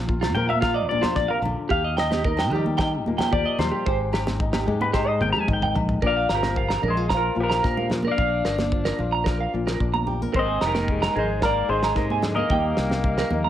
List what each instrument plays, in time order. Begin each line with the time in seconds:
Already playing: fingered electric bass A#1, nylon-string guitar A#2 A#4
0.09 nylon-string guitar F4, kick
0.21 clean electric guitar F4, snare, low agogo
0.35 fingered electric bass A#2, nylon-string guitar F3 A#4, clean electric guitar G5, low conga
0.49 clean electric guitar E5 F5, high conga
0.61 clean electric guitar F4 F5, nylon-string guitar F4, kick, snare, low agogo
0.74 clean electric guitar D5 D#5
0.88 fingered electric bass A#1, nylon-string guitar A#2 D4, clean electric guitar D5, high conga
1.01 clean electric guitar F4 C5, snare, high conga, low conga, low agogo
1.16 fingered electric bass A#1, nylon-string guitar C3, clean electric guitar D5, kick, snare
1.28 clean electric guitar A#4 F5
1.42 fingered electric bass A#1, nylon-string guitar D3, low conga, low agogo
1.69 fingered electric bass D#2, clean electric guitar G4 F5, nylon-string guitar G4, muted nylon-string guitar stroke, kick
1.84 clean electric guitar D#5
1.97 clean electric guitar D#5 G5, snare, low agogo
2.11 clean electric guitar G4, snare, high conga
2.24 nylon-string guitar D#4, clean electric guitar A#4, kick
2.37 clean electric guitar G5, snare, low agogo
2.50 fingered electric bass D#3, clean electric guitar G4, low conga
2.54 nylon-string guitar G3 G4
2.66 high conga
2.77 clean electric guitar G5, kick, snare, low agogo
2.82 nylon-string guitar D#4
3.05 fingered electric bass D#2, nylon-string guitar A#2 A#3, high conga
3.18 clean electric guitar G5, snare, high conga, low conga, low agogo
3.31 fingered electric bass D#2, nylon-string guitar F3, clean electric guitar G4 D5, kick
3.45 clean electric guitar D#5
3.58 fingered electric bass D#2, nylon-string guitar G3, clean electric guitar C5, snare, low conga, low agogo
3.72 clean electric guitar G4
3.86 fingered electric bass G#1, nylon-string guitar G#2 G4, clean electric guitar C5, kick
4.13 clean electric guitar G4, snare, low agogo
4.27 snare, high conga
4.40 nylon-string guitar D#4, kick
4.53 clean electric guitar G4, snare, high conga, low agogo
4.66 fingered electric bass G#2, nylon-string guitar G#3 G4, low conga
4.81 clean electric guitar B4, muted clean electric guitar stroke, high conga
4.93 nylon-string guitar D#4, clean electric guitar G4 C5, kick, snare, low agogo
5.07 clean electric guitar C5 D#5
5.20 fingered electric bass G#1, nylon-string guitar D#3 C4, clean electric guitar G5, high tom, high conga
5.33 clean electric guitar G4 A#5, low agogo
5.37 low conga
5.41 clean electric guitar G#5
5.48 fingered electric bass G#1, nylon-string guitar D#4, kick, mid tom
5.53 clean electric guitar G5
5.62 clean electric guitar G5, mid tom
5.74 fingered electric bass A#1, muted nylon-string guitar stroke, floor tom, low conga, low agogo
5.89 floor tom
6.02 fingered electric bass A#1, nylon-string guitar A#2, alto saxophone D4, clean electric guitar A#4, kick
6.06 clean electric guitar D5 F5
6.17 clean electric guitar F5
6.29 fingered electric bass G1, alto saxophone F3, clean electric guitar A#5, snare
6.35 clean electric guitar G4 A#4
6.43 clean electric guitar A#4, snare, high conga
6.55 nylon-string guitar F3, clean electric guitar F5, kick
6.68 clean electric guitar A#5, snare
6.82 fingered electric bass A#1, nylon-string guitar D4, clean electric guitar A#4, low conga
6.87 alto saxophone G#3, clean electric guitar G#4 C5
6.97 nylon-string guitar F4
7.09 nylon-string guitar F4, clean electric guitar A#5, kick, snare
7.14 alto saxophone F3, clean electric guitar F4 A#4
7.35 fingered electric bass A#1, nylon-string guitar A#2 F4
7.39 alto saxophone F3, clean electric guitar G4 A#4
7.50 clean electric guitar A#5, snare
7.63 fingered electric bass A#2, nylon-string guitar D4, clean electric guitar A#4, kick, snare
7.77 clean electric guitar F5, high conga
7.90 nylon-string guitar F4, snare, low conga
8.03 clean electric guitar A#4, high conga
8.07 alto saxophone D4, clean electric guitar D5
8.12 clean electric guitar F5
8.16 fingered electric bass A#1, clean electric guitar F5, muted nylon-string guitar stroke, kick
8.45 fingered electric bass G1, clean electric guitar A#4, snare
8.58 snare, high conga
8.72 nylon-string guitar F3, kick
8.85 clean electric guitar A#4, snare
8.99 fingered electric bass A#1, nylon-string guitar F4, low conga
9.12 clean electric guitar A#5
9.24 clean electric guitar A#4, nylon-string guitar A#4, kick, snare
9.40 clean electric guitar F5
9.54 fingered electric bass A#1, nylon-string guitar A#2, muted nylon-string guitar stroke
9.67 clean electric guitar A#4, snare
9.80 fingered electric bass A#1, nylon-string guitar D4, kick
9.94 clean electric guitar A#5, high conga
10.07 nylon-string guitar G4, low conga
10.22 nylon-string guitar A#4, high conga
10.33 fingered electric bass G#1, nylon-string guitar G#2, alto saxophone C4, clean electric guitar A#4 C5, kick
10.39 clean electric guitar D#5
10.47 clean electric guitar G#5
10.61 fingered electric bass F1, clean electric guitar A#5, snare
10.65 alto saxophone D#3, clean electric guitar G4 A#4
10.75 clean electric guitar A#4, snare, high conga
10.88 nylon-string guitar G#3, kick
11.02 clean electric guitar A#5, snare
11.16 fingered electric bass G#1, alto saxophone G#3, nylon-string guitar D#4, clean electric guitar G#4 A#4 C5, low conga
11.42 alto saxophone A#3, nylon-string guitar A#4, clean electric guitar A#4 D5 A#5, kick, snare
11.69 fingered electric bass G#1, nylon-string guitar D#3 D#4, alto saxophone G#3, clean electric guitar G#4 C5
11.83 clean electric guitar A#5, snare
11.95 fingered electric bass G#2, nylon-string guitar C3, clean electric guitar A#4, kick, snare
12.10 clean electric guitar G#5, high conga
12.22 nylon-string guitar D3, snare, low conga
12.35 alto saxophone A#3, clean electric guitar A#4 D#5, high conga
12.39 clean electric guitar A#4
12.49 fingered electric bass D#2, nylon-string guitar G3 A#3 D#4 G4, clean electric guitar G5, muted nylon-string guitar stroke, kick
12.77 fingered electric bass C2, snare
12.89 snare, high conga
13.04 nylon-string guitar G3, kick
13.18 clean electric guitar A#4, snare
13.30 fingered electric bass D#2, nylon-string guitar D#4, high conga, low conga
13.44 clean electric guitar A#5